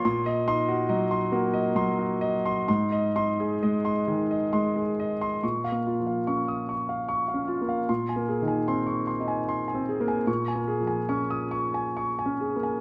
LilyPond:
<<
  \new Staff \with { instrumentName = "Grand piano" } { \time 3/4 \key bes \minor \tempo 4 = 71 c'''16 ees''16 c'''16 ges'16 ees''16 c'''16 ges'16 ees''16 c'''16 ges'16 ees''16 c'''16 | c'''16 ees''16 c'''16 aes'16 ees''16 c'''16 aes'16 ees''16 c'''16 aes'16 ees''16 c'''16 | des'''16 f''16 f'16 f''16 des'''16 ees'''16 des'''16 f''16 des'''16 f''16 f'16 f''16 | c'''16 aes''16 aes'16 aes''16 c'''16 des'''16 c'''16 aes''16 c'''16 aes''16 aes'16 aes''16 |
des'''16 aes''16 aes'16 aes''16 des'''16 ees'''16 des'''16 aes''16 des'''16 aes''16 aes'16 aes''16 | }
  \new Staff \with { instrumentName = "Grand piano" } { \time 3/4 \key bes \minor bes,8 ees'8 ges8 bes8 ges4 | aes,8 ees'8 aes8 ees8 aes4 | \tuplet 3/2 { bes,8 bes8 f8 } des'8 r8 \tuplet 3/2 { r8 des'8 bes8 } | \tuplet 3/2 { bes,8 bes8 ees8 c'4 ees'8~ ees'8 c'8 bes8 } |
\tuplet 3/2 { bes,8 bes8 f8 } des'8 r8 \tuplet 3/2 { r8 des'8 bes8 } | }
>>